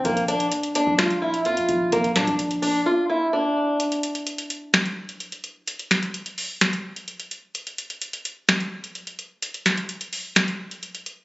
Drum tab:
HH |xxxxxxx-xx-xxxx-|xxxxxxo---------|xxxxxxx-xx-xxxx-|xxxxxxo-xx-xxxx-|
SD |--------o-------|--o-------------|--------o-------|--o-----o-------|
BD |o------o------o-|o--o------------|----------------|----------------|

HH |xxxxxxx-xx-xxxx-|xxxxxxo-xx-xxxx-|
SD |--------o-------|--o-----o-------|
BD |----------------|----------------|